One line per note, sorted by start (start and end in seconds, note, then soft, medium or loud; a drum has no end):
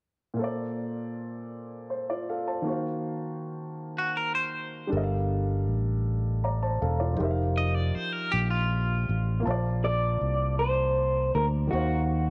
0.34 2.59 A#2 medium
0.34 2.61 A#3 medium
0.39 1.87 A4 medium
0.39 1.88 C5 soft
0.44 1.90 D5 medium
1.90 2.08 C5 soft
2.10 2.28 F4 soft
2.10 2.28 D5 medium
2.29 2.47 A4 soft
2.29 2.47 F5 soft
2.48 2.68 C5 soft
2.48 2.83 A5 soft
2.62 4.86 D#3 medium
2.62 4.87 A#3 medium
2.67 4.89 F#4 medium
2.67 4.90 C5 medium
2.72 4.91 F5 medium
3.98 4.16 F#4 medium
4.17 4.34 A#4 medium
4.35 4.89 C5 medium
4.87 7.12 G3 medium
4.87 7.13 D4 soft
4.92 5.68 G1 medium
4.92 6.40 A4 medium
4.92 6.41 A#4 medium
4.97 5.01 D#5 soft
5.03 6.46 F5 medium
5.68 6.77 A1 medium
6.44 6.62 D5 soft
6.44 6.62 A#5 soft
6.63 6.81 C5 soft
6.63 6.80 A5 medium
6.82 7.16 E1 medium
6.82 7.00 A4 soft
6.82 6.99 F5 soft
7.00 7.36 F4 soft
7.00 7.36 D5 soft
7.14 9.39 F3 medium
7.14 9.40 D#4 medium
7.19 7.91 F1 medium
7.19 9.41 G4 medium
7.19 9.43 A#4 medium
7.24 7.28 E5 medium
7.31 9.47 F5 medium
7.58 7.75 D#5 medium
7.75 7.95 D5 medium
7.95 8.12 C5 medium
7.95 muted fingered electric bass stroke soft
8.12 8.31 A#4 medium
8.32 9.04 A#1 medium
8.32 8.50 G4 medium
8.50 9.41 F4 medium
9.09 9.42 A1 medium
9.40 11.65 A#3 medium
9.40 11.66 F4 medium
9.45 10.18 A#1 medium
9.45 11.69 C5 medium
9.45 11.68 A5 medium
9.51 11.70 D5 medium
9.84 10.59 D5 medium
10.21 11.30 C2 medium
10.59 11.35 C5 medium
11.35 11.68 D2 medium
11.35 11.45 A#4 medium
11.67 12.30 D#3 medium
11.67 12.30 D#4 soft
11.67 12.30 F#4 medium
11.72 12.30 D#2 medium
11.72 12.30 F#4 medium
11.72 12.30 C5 soft
11.78 12.30 F5 medium